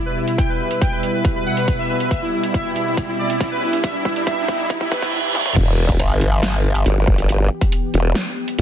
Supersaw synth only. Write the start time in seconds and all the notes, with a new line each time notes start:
0.06 B4
0.17 E4
0.28 E4
0.38 G5
0.49 B4
0.60 B4
0.71 B4
0.82 G5
0.92 B4
1.03 B4
1.14 B4
1.36 B4
1.46 F#5
1.57 B4
1.68 B4
1.79 E5
1.89 B4
2.00 B4
2.11 E5
2.22 E4
2.33 E4
2.44 E4
2.54 E5
2.65 E4
2.76 E4
2.87 E4
3.08 E4
3.19 D5
3.30 E4
3.41 E4
3.51 B4
3.62 E4
3.73 E4
3.84 E5
3.95 E4
4.05 E4
4.16 E4
4.27 E5
4.38 E4
4.48 E4
4.59 E4
4.81 E4
4.92 B4
5.02 E4